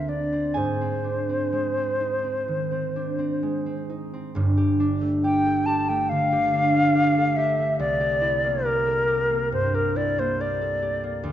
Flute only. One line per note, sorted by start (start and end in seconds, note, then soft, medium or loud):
0.00 0.10 E5 medium
0.09 0.59 D5 medium
0.58 3.90 C5 medium
5.24 5.67 G5 medium
5.66 5.90 A5 medium
5.89 6.11 G5 medium
6.09 7.38 F5 loud
7.36 7.79 E5 loud
7.80 8.67 D5 loud
8.65 9.52 A#4 medium
9.53 9.76 C5 medium
9.75 9.98 A#4 medium
9.97 10.21 D5 medium
10.19 10.42 C5 medium
10.41 11.25 D5 medium